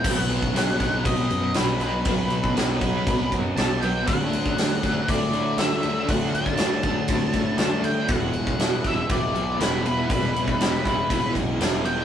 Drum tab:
CC |x-x-x-x-x-x-x-x-|x-x-x-x-x-x-x-x-|x-x-x-x-x-x-x-x-|x-x-x-x-x-x-x-x-|
SD |----ooo-----o---|----o-------o---|----o-o-----o---|----o-------o---|
BD |o--o--o-o-------|o--o--o-o-o-----|o--o--o-o-------|o--o--o-o-o-----|

CC |x-x-x-x-x-x-x-x-|x-x-x-x-x-x-x-x-|
SD |----o-o-----o---|----oo------o---|
BD |o--o--o-o-------|o--o--o-o-o-----|